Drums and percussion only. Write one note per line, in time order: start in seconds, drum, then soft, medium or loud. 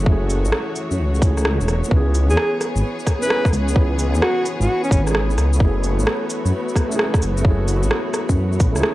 0.06 kick loud
0.30 cabasa medium
0.45 shaker medium
0.52 cross-stick loud
0.76 cabasa medium
0.91 shaker medium
1.15 shaker soft
1.22 kick loud
1.22 cabasa medium
1.37 cross-stick soft
1.37 shaker medium
1.45 cross-stick loud
1.61 shaker soft
1.68 cross-stick medium
1.68 cabasa medium
1.84 shaker medium
1.91 kick loud
2.15 cabasa medium
2.30 shaker medium
2.37 cross-stick loud
2.61 cross-stick medium
2.61 cabasa medium
2.76 shaker medium
2.99 shaker soft
3.07 kick medium
3.07 cross-stick soft
3.07 cabasa medium
3.22 shaker medium
3.30 cross-stick loud
3.45 kick loud
3.45 cross-stick soft
3.45 shaker soft
3.53 cabasa medium
3.68 shaker medium
3.76 kick loud
3.99 cabasa medium
4.15 shaker medium
4.22 cross-stick loud
4.46 cabasa medium
4.61 shaker medium
4.84 shaker soft
4.91 kick loud
4.91 cabasa medium
5.07 cross-stick soft
5.07 shaker medium
5.15 cross-stick loud
5.30 shaker soft
5.38 cross-stick medium
5.38 cabasa medium
5.53 shaker medium
5.60 kick loud
5.84 cabasa medium
5.99 shaker medium
6.07 cross-stick loud
6.30 cabasa medium
6.46 shaker medium
6.68 shaker soft
6.76 kick medium
6.76 cross-stick medium
6.76 cabasa medium
6.92 shaker medium
6.99 cross-stick loud
7.14 kick loud
7.14 cross-stick medium
7.14 shaker soft
7.22 cabasa medium
7.37 shaker medium
7.45 kick loud
7.68 cabasa medium
7.68 shaker soft
7.83 shaker medium
7.91 cross-stick loud
8.14 cross-stick medium
8.14 cabasa medium
8.29 kick medium
8.29 shaker medium
8.52 shaker soft
8.60 kick loud
8.60 cabasa medium
8.76 cross-stick soft
8.76 shaker medium
8.83 cross-stick loud